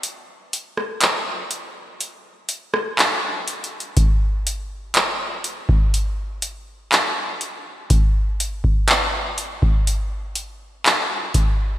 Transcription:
\new DrumStaff \with { instrumentName = "Drums" } \drummode { \time 4/4 \tempo 4 = 61 hh8 hh16 ss16 <hc hh>8 hh8 hh8 hh16 ss16 \tuplet 3/2 { <hc hh>16 r16 r16 hh16 hh16 hh16 } | <hh bd>8 hh8 <hc hh>8 hh16 bd16 hh8 hh8 <hc hh>8 hh8 | <hh bd>8 hh16 bd16 <hc hh>8 hh16 bd16 hh8 hh8 <hc hh>8 <hh bd>8 | }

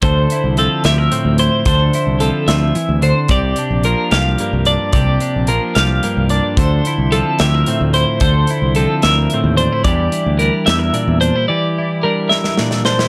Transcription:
<<
  \new Staff \with { instrumentName = "Clean electric guitar" } { \time 6/8 \key d \minor \tempo 4. = 73 c''4 a'8 e''4 c''8 | c''4 a'8 e''4 c''8 | d''4 bes'8 f''4 d''8 | d''4 bes'8 f''4 d''8 |
c''4 a'8 e''4 c''8 | c''4 a'8 e''4 c''8 | d''4 bes'8 e''4 c''8 | d''4 bes'8 e''4 c''8 | }
  \new Staff \with { instrumentName = "Clean electric guitar" } { \time 6/8 \key d \minor << { a'8 e'8 c'8 g'16 bes'16 c'8 e'8 | a'8 e'8 c'2 | g'8 d'8 bes8 g'8 bes8 d'8 | g'8 d'8 bes8 g'8 bes8 d'8 |
a'8 e'8 c'8 g'16 bes'16 c'8 e'8 | a'8 e'8 c'8 bes'8 c'8 d'16 e'16 | <g d' e' g'>8 e'8 d'8 g'16 bes'16 d'8 d'16 e'16 | g'8 e'8 d'8 bes'8 d'8 d'16 e'16 | } \\ { d4 f4 a,4 | d4 f8 f8 e8 d8 | c4 f4 g,4 | c4 f4 g,4 |
d4 f4 a,4 | d4 f4 a,4 | e4 g4 bes,4 | e4 g4 bes,4 | } >> }
  \new Staff \with { instrumentName = "Fingered electric bass" } { \clef bass \time 6/8 \key d \minor d,8 r16 c,8 r16 d,8 r16 d,8 r16 | d,8 r16 c,8 r16 d,8 r16 d,8 r16 | c,8 r16 bes,,8 r16 c,8 r16 c,8 r16 | c,8 r16 bes,,8 r16 c,8 r16 c,8 r16 |
d,8 r16 c,8 r16 d,8 r16 d,8 r16 | d,8 r16 c,8 r16 d,8 r16 ees,8 r16 | e,8 r16 d,8 r16 e,8 r16 e,8 r16 | r2. | }
  \new DrumStaff \with { instrumentName = "Drums" } \drummode { \time 6/8 <hh bd>8 hh8 hh8 <hh sn>8 hh8 hh8 | <hh bd>8 hh8 hh8 <hh sn>8 hh8 hh8 | <hh bd>8 hh8 hh8 <hh sn>8 hh8 hh8 | <hh bd>8 hh8 hh8 <hh sn>8 hh8 hh8 |
<hh bd>8 hh8 hh8 <hh sn>8 hh8 hh8 | <hh bd>8 hh8 hh8 <hh sn>8 hh8 hh8 | <hh bd>8 hh8 hh8 <hh sn>8 hh8 hh8 | r4. sn16 sn16 sn16 sn16 sn16 sn16 | }
>>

